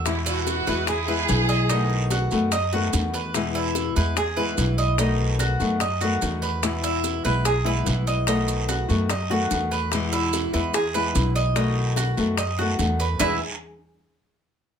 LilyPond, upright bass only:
\new Staff \with { instrumentName = "Upright bass" } { \clef bass \time 4/4 \key e \major \tempo 4 = 146 e,4. e,4. b,,4~ | b,,4. fis,4. e,4~ | e,4. e,4. b,,4~ | b,,4. fis,4. e,4~ |
e,4. b,,4. b,,4~ | b,,4. fis,4. e,4~ | e,4. e,4. b,,4~ | b,,4. fis,4. e,4 |
e,8 r2. r8 | }